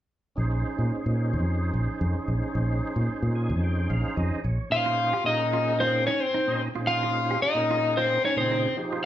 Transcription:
0.36 fretless electric bass A#1, tonewheel organ C#4 D#4 G#4 C5
0.79 fretless electric bass A#2
0.92 muted fretless electric bass stroke
1.06 fretless electric bass A#2
1.33 fretless electric bass F2
1.74 fretless electric bass A#1
2.01 fretless electric bass F2
2.15 muted fretless electric bass stroke
2.28 fretless electric bass A#1
2.55 fretless electric bass A#1
2.96 fretless electric bass A#2
3.09 muted fretless electric bass stroke
3.23 fretless electric bass A#2
3.35 tonewheel organ G#5
3.50 fretless electric bass F2
3.63 tonewheel organ G5
3.90 fretless electric bass A#1, tonewheel organ F5
4.17 fretless electric bass F2, tonewheel organ D#5
4.31 muted fretless electric bass stroke
4.44 fretless electric bass A#1, tonewheel organ C#5
4.70 tonewheel organ A#2 C#4 D#4 G#4 C5, overdriven electric guitar F4, lead electric guitar F5
4.86 clean electric guitar F4
5.13 clean electric guitar G4
5.24 tonewheel organ A#2 C#4 D#4 G#4 A#4, overdriven electric guitar D#4, lead electric guitar D#5
5.53 clean electric guitar F4
5.80 overdriven electric guitar C4, clean electric guitar F4, lead electric guitar C5
6.07 overdriven electric guitar C#4, clean electric guitar D#4, lead electric guitar C#5
6.20 overdriven electric guitar C4, lead electric guitar C5
6.34 clean electric guitar D#4
6.47 tonewheel organ A#2 C#4 D#4 G#4 D#5
6.75 tonewheel organ A#2 C#4 D#4 G#4 C5, clean electric guitar F4
6.87 overdriven electric guitar F4, lead electric guitar F5
7.03 clean electric guitar F4
7.31 clean electric guitar G4
7.42 overdriven electric guitar D#4, lead electric guitar D#5
7.55 tonewheel organ A#2 C#4 D#4 G#4 A#4
7.71 clean electric guitar F4
7.97 overdriven electric guitar C4, clean electric guitar F4, lead electric guitar C5
8.25 overdriven electric guitar C#4, clean electric guitar D#4, lead electric guitar C#5
8.36 tonewheel organ A#2 C#3 D#4 G#4 C5, lead electric guitar C5
8.40 overdriven electric guitar C4
8.52 clean electric guitar D#4
8.77 tonewheel organ F3 D#4 G4 G#4 C5
8.93 clean electric guitar F4

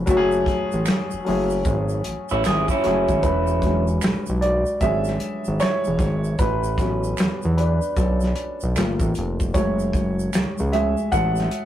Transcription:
Already playing: upright piano F#3 A3 C#4 E4 G#4 B4
0.06 analog synth bass F#1, upright piano F#3 A3 C#4 E4, kick, closed hi-hat, shaker
0.10 upright piano F#4
0.17 upright piano G#4
0.32 shaker
0.46 kick, snare, closed hi-hat
0.72 analog synth bass A1, shaker
0.86 finger snap, snare, closed hi-hat, shaker
0.88 finger snap
1.11 analog synth bass F#1, shaker
1.24 analog synth bass F#1, upright piano F#3 A3 C#4 E4, open hi-hat
1.29 upright piano G#4
1.50 shaker
1.65 analog synth bass G#1, kick, closed hi-hat, shaker
1.89 shaker
2.04 analog synth bass A1, closed hi-hat
2.29 analog synth bass A1, clean electric guitar C#4 E4, shaker
2.44 clean electric guitar G#4, finger snap, snare, closed hi-hat, shaker
2.47 analog synth bass G#1, clean electric guitar E4, finger snap
2.68 clean electric guitar C#4 E4, kick, shaker
2.82 analog synth bass F#1, upright piano F#3 A3 C#4 E4, snare, closed hi-hat
2.87 upright piano G#4
3.08 analog synth bass G#1, kick, shaker
3.23 analog synth bass E1, upright piano E4 B4, kick, closed hi-hat, shaker
3.47 shaker
3.62 upright piano D3 F#3 G#3 C#4, kick, snare, closed hi-hat, shaker
3.87 shaker
4.01 finger snap, snare, closed hi-hat, shaker
4.04 analog synth bass B1, finger snap
4.26 analog synth bass B1, shaker
4.41 upright piano F#4 D5, closed hi-hat
4.66 shaker
4.81 analog synth bass G#1, upright piano D3 F#3 G#3 C#4 G#4 E5, kick, closed hi-hat, shaker
5.04 snare, shaker
5.20 closed hi-hat
5.45 analog synth bass G#1, shaker
5.60 upright piano E4 C#5, finger snap, snare, closed hi-hat, shaker
5.63 finger snap
5.84 analog synth bass E1, shaker
5.99 analog synth bass G#1, kick, snare, closed hi-hat, shaker
6.24 shaker
6.39 analog synth bass A1, upright piano E4 B4, kick, closed hi-hat, shaker
6.63 shaker
6.78 upright piano F#3 B3 C#4, kick, snare, closed hi-hat, shaker
7.04 shaker
7.17 analog synth bass E2, finger snap, snare, closed hi-hat, shaker
7.20 finger snap
7.42 analog synth bass E2, shaker
7.57 upright piano D4 B4, closed hi-hat
7.82 shaker
7.97 analog synth bass B1, upright piano C#4 A4, kick, closed hi-hat, shaker
8.21 snare, shaker
8.36 closed hi-hat
8.60 analog synth bass B1, shaker
8.76 analog synth bass G1, upright piano A3 A#3 F4, finger snap, snare, closed hi-hat, shaker
8.78 finger snap
9.00 analog synth bass A1, kick, shaker
9.15 analog synth bass F1, closed hi-hat, shaker
9.40 kick, shaker
9.54 analog synth bass F#1, upright piano G#3 A3 E4 C#5, kick, closed hi-hat, shaker
9.79 shaker
9.93 kick, closed hi-hat, shaker
10.19 shaker
10.33 finger snap, snare, closed hi-hat, shaker
10.35 analog synth bass C#2, finger snap
10.58 analog synth bass C#2, shaker
10.72 upright piano G#3 A3 E4 G#4 E5, closed hi-hat
10.97 shaker
11.12 analog synth bass A1, upright piano A4 F#5, kick, closed hi-hat, shaker
11.36 snare, shaker
11.51 closed hi-hat

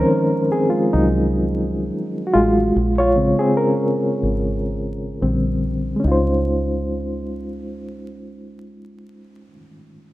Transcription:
Already playing: reed electric piano D#3 F3 G#3 C4 C#4 D#4 A#4 C5
0.52 reed electric piano C4 G#4
0.70 reed electric piano G#3 F4
0.93 fingered electric bass C2, reed electric piano F#3 D#4
2.27 reed electric piano F#4
2.34 fingered electric bass A1, reed electric piano G#3 F4
2.76 fingered electric bass A#1
2.98 reed electric piano F4 C#5
3.16 reed electric piano C#3 G#3 C4
3.39 reed electric piano C4 G#4
3.57 reed electric piano C#4 A#4
4.23 fingered electric bass G#1
5.21 fingered electric bass A#1, reed electric piano D3 G3 C4
5.96 reed electric piano G#3 C#4
6.04 fingered electric bass C#2, reed electric piano D#4 F4
6.12 reed electric piano C5

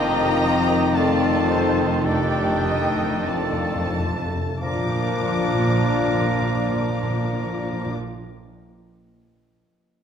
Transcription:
Already playing: double bass section F1, cello section F2, bassoon D#3, french horn section C4 D#4, violin section D4 F4 A#5, clarinet D4, oboe G4, flute section A#4, viola section D#5
0.43 violin section C4
0.95 violin section C4 F4 A5, clarinet C4, oboe F4, flute section A4, viola section D5
1.51 violin section D#4, viola section C5
2.05 timpani F2, french horn section A3, violin section D4 G5, clarinet D4, flute section G4, oboe A4, viola section D5
2.15 timpani F2
2.35 timpani F2
2.45 timpani F2
2.55 timpani F2
2.65 timpani F2, violin section D#4, viola section D#5
2.75 timpani F2
2.86 timpani F2
2.96 timpani F2
3.07 timpani F2
3.18 timpani F2
3.26 timpani F2, violin section C4 F4 A5, flute section A4, viola section D5
3.42 timpani F2
3.53 timpani F2
3.63 timpani F2
3.76 timpani F2
3.88 timpani F2
4.00 timpani F2
4.12 timpani F2
4.24 timpani F2
4.36 timpani F2
4.48 timpani F2
4.61 double bass section A#1, cello section A#2, timpani A#2, bassoon F3, viola section F3 D4, french horn section A#3 F4, clarinet D4, violin section F4 A#4 D6, oboe A#4, flute section D5
4.69 timpani A#2
4.76 timpani A#2
4.82 timpani A#2
4.89 timpani A#2
4.95 timpani A#2
5.02 timpani A#2
5.08 timpani A#2
5.15 timpani A#2
5.22 timpani A#2
5.29 timpani A#2
5.35 timpani A#2
5.42 timpani A#2
5.48 timpani A#2
5.55 timpani A#2
5.61 timpani A#2
5.68 timpani A#2
5.75 timpani A#2
5.81 timpani A#2
5.94 timpani A#2
6.01 timpani A#2
6.08 timpani A#2
6.15 timpani A#2
6.21 timpani A#2
6.28 timpani A#2
6.35 timpani A#2
6.42 timpani A#2
6.48 timpani A#2
6.55 timpani A#2
6.62 timpani A#2
6.69 timpani A#2
6.76 timpani A#2
6.83 timpani A#2
6.90 timpani A#2
6.97 timpani A#2
7.03 timpani A#2
7.10 timpani A#2
7.17 timpani A#2
7.25 timpani A#2
7.31 timpani A#2
7.38 timpani A#2
7.45 timpani A#2
7.52 timpani A#2
7.59 timpani A#2
7.66 timpani A#2
7.72 timpani A#2
7.79 timpani A#2
7.86 timpani A#2

